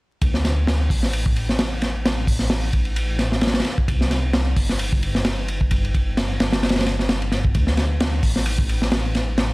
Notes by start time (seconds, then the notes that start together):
0.22 D2, kick, ride
0.34 snare
0.45 snare, ride
0.67 snare, ride
0.90 A1, kick, open hi-hat
1.03 snare
1.13 ride
1.26 kick
1.36 ride
1.49 snare
1.59 snare, ride
1.82 snare, ride
2.06 snare, ride
2.27 kick, open hi-hat
2.39 snare
2.50 snare, ride
2.73 A1, kick, ride
2.85 ride
2.96 ride
3.19 snare, ride
3.32 snare
3.41 snare, ride
3.47 snare, ride
3.54 snare, ride
3.60 snare, ride
3.65 snare, ride
3.78 kick
3.88 C2, kick, ride
4.01 snare
4.11 snare, ride
4.33 snare, ride
4.56 G1, kick, open hi-hat
4.69 snare
4.79 ride
4.93 kick
5.03 ride
5.15 snare
5.25 snare, ride
5.48 ride
5.61 kick
5.71 kick, ride
5.84 ride
5.94 kick, ride
6.17 snare, ride
6.40 G1, snare, ride
6.53 snare, ride
6.63 snare, ride
6.69 snare, ride
6.76 snare, ride
6.81 snare, ride
6.87 snare, ride
6.99 snare
7.09 snare, ride
7.22 ride
7.32 G1, snare, ride
7.45 kick
7.55 D2, kick, ride
7.67 snare
7.77 snare, ride
8.00 snare, ride
8.23 A1, kick, open hi-hat
8.36 snare
8.46 ride
8.59 kick
8.69 ride
8.82 snare
8.92 snare, ride
9.15 snare, ride
9.38 snare, ride